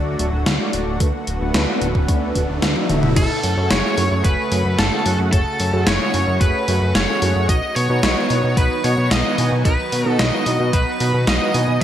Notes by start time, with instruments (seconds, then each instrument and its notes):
Already playing: analog synth bass D2, analog synth pad D3 F#3 A3 F#4, analog polysynth A3 D4 F#4 D5, riser
0.19 analog synth bass D1, analog polysynth A3 D4 F#4 D5, closed hi-hat
0.33 analog synth bass D1
0.46 analog synth bass D2, snare, closed hi-hat
0.60 analog polysynth A3 D4 F#4 D5
0.73 analog synth bass D1, closed hi-hat
0.87 analog synth bass D1
1.00 analog synth bass D2, analog polysynth A3 D4 F#4 B4, analog synth pad A3 B3, kick, closed hi-hat
1.27 analog synth bass D1, closed hi-hat
1.41 analog synth bass D1, analog polysynth A3 D4 F#4 B4
1.54 analog synth bass D2, snare, closed hi-hat
1.81 analog synth bass D1, closed hi-hat
1.95 analog synth bass D1, analog polysynth A3 D4 F#4 B4, kick
2.08 analog synth bass D2, kick, closed hi-hat
2.35 analog synth bass D1, analog polysynth A3 D4 F#4 B4, kick, closed hi-hat
2.49 analog synth bass D1
2.62 analog synth bass D2, snare, closed hi-hat
2.76 analog polysynth A3 D4 F#4 B4, high tom
2.89 analog synth bass D1, analog polysynth A3 D4 F#4 E5, closed hi-hat, mid tom
3.03 analog synth bass D1, mid tom
3.16 analog synth bass F#1, analog synth pad C#3 A3 F#4, analog polysynth A3 F#4 G#4 C#5, lead electric guitar A4, digital synth lead A5, kick, closed hi-hat, crash
3.43 analog synth bass F#2, open hi-hat
3.57 analog synth bass F#2, analog polysynth A3 F#4 G#4 C#5
3.71 analog synth bass F#1, lead electric guitar C#5, digital synth lead C#6, snare, closed hi-hat
3.98 analog synth bass F#2, open hi-hat
4.11 analog synth bass F#2, analog polysynth A3 F#4 G#4 C#5
4.25 analog synth bass F#1, lead electric guitar B4, digital synth lead B5, kick, closed hi-hat
4.52 analog synth bass F#2, analog polysynth A3 F#4 G#4 C#5, open hi-hat
4.65 analog synth bass F#2
4.79 analog synth bass F#1, lead electric guitar A4, digital synth lead A5, snare, closed hi-hat
4.92 analog polysynth A3 F#4 G#4 C#5
5.06 analog synth bass F#2, analog polysynth A3 F#4 G#4 F#5, open hi-hat
5.19 analog synth bass F#2
5.33 analog synth bass F#1, analog polysynth A3 F#4 G#4 C#5, lead electric guitar A4, digital synth lead A5, kick, closed hi-hat
5.60 analog synth bass F#2, open hi-hat
5.73 analog synth bass F#2, analog polysynth A3 F#4 G#4 C#5
5.87 analog synth bass F#1, lead electric guitar C#5, digital synth lead C#6, snare, closed hi-hat
6.14 analog synth bass F#2, open hi-hat
6.27 analog synth bass F#2, analog polysynth A3 F#4 G#4 C#5
6.41 analog synth bass F#1, lead electric guitar B4, digital synth lead B5, kick, closed hi-hat
6.68 analog synth bass F#2, analog polysynth A3 F#4 G#4 C#5, open hi-hat
6.82 analog synth bass F#2
6.95 analog synth bass F#1, lead electric guitar C#5, digital synth lead C#6, snare, closed hi-hat
7.08 analog polysynth A3 F#4 G#4 C#5
7.22 analog synth bass F#2, analog polysynth A3 F#4 G#4 F#5, open hi-hat
7.36 analog synth bass F#2
7.49 analog synth bass B1, analog synth pad D#3 F#3 B3, analog polysynth B3 D#4 F#4 D#5, lead electric guitar D#5, digital synth lead D#6, kick, closed hi-hat
7.76 analog synth bass B2, lead electric guitar C#5, digital synth lead C#6, open hi-hat
7.90 analog synth bass B2, analog polysynth B3 D#4 F#4 D#5
8.03 analog synth bass B1, snare, closed hi-hat
8.30 analog synth bass B2, open hi-hat
8.44 analog synth bass B2, analog polysynth B3 D#4 F#4 D#5
8.57 analog synth bass B1, lead electric guitar B4, digital synth lead B5, kick, closed hi-hat
8.84 analog synth bass B2, analog polysynth B3 D#4 F#4 D#5, lead electric guitar C#5, digital synth lead C#6, open hi-hat
8.98 analog synth bass B2
9.11 analog synth bass B1, lead electric guitar D#5, digital synth lead D#6, snare, closed hi-hat
9.25 analog polysynth B3 D#4 F#4 D#5
9.38 analog synth bass B2, analog polysynth B3 D#4 F#4 G#5, open hi-hat
9.52 analog synth bass B2
9.65 analog synth bass B1, analog polysynth B3 D#4 F#4 D#5, lead electric guitar B4, digital synth lead B5, kick, closed hi-hat
9.92 analog synth bass B2, open hi-hat
10.06 analog synth bass B2, analog polysynth B3 D#4 F#4 D#5, lead electric guitar A4
10.19 analog synth bass B1, lead electric guitar D#5, digital synth lead D#6, snare, closed hi-hat
10.46 analog synth bass B2, open hi-hat
10.60 analog synth bass B2, analog polysynth B3 D#4 F#4 D#5
10.73 analog synth bass B1, lead electric guitar B4, digital synth lead B5, kick, closed hi-hat
11.00 analog synth bass B2, analog polysynth B3 D#4 F#4 D#5, open hi-hat
11.14 analog synth bass B2
11.27 analog synth bass B1, lead electric guitar D#5, digital synth lead D#6, snare, closed hi-hat
11.41 analog polysynth B3 D#4 F#4 D#5
11.54 analog synth bass B2, analog polysynth B3 D#4 F#4 G#5, open hi-hat
11.68 analog synth bass B2